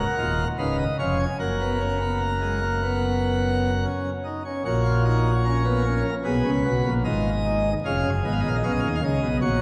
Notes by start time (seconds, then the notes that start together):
Already playing: A#4 F#5
0.18 D#1 D#2 F4
0.58 C#1 C#2 D#4 B4 F5
0.79 D#5
0.99 F1 F2 C#4 C#5 F5
1.19 G#5
1.39 F#1 F#2 A#3 A#4 F#5
1.60 B3
1.80 C#4
2.01 B3
2.21 A#3
2.41 G#3
2.62 A#3
2.83 B3
3.84 C#4
4.25 D#4
4.45 C#4
4.65 A#1 A#2 F#4 C#5
4.85 F4
5.05 D#4
5.45 C#4 A#4
5.65 B3
5.85 C#4
6.24 B1 B2 G#4 B4
6.45 C#2 C#3
6.64 B1 B2 F#4
6.85 A#1 A#2
7.04 G#1 G#2 F4 D#5
7.46 D#4
7.85 F1 F2 C#4 G#4 F5
8.05 F#1 F#2
8.25 G#1 G#2 B3 D#5
8.32 F5
8.40 A#2 D#5
8.44 A#1 F5
8.55 D#5
8.63 B1 B2 C#4 F5
8.72 D#5
8.79 D#2 D#3 F5
8.87 D#5
8.95 F5
9.02 C#2 C#3 G#4 D#5
9.22 B1 B2
9.42 A#1 A#2 F#4 C#5